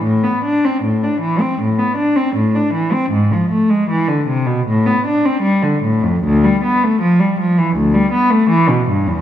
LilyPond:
\new Staff \with { instrumentName = "Cello" } { \clef bass \time 4/4 \key a \minor \tempo 4 = 79 a,16 b16 d'16 c'16 a,16 d'16 e16 c'16 a,16 b16 d'16 c'16 a,16 d'16 e16 c'16 | gis,16 f16 a16 gis16 e16 d16 c16 b,16 a,16 b16 d'16 c'16 g16 d16 a,16 f,16 | d,16 g16 b16 a16 f16 g16 f16 e16 d,16 g16 b16 a16 e16 b,16 g,16 e,16 | }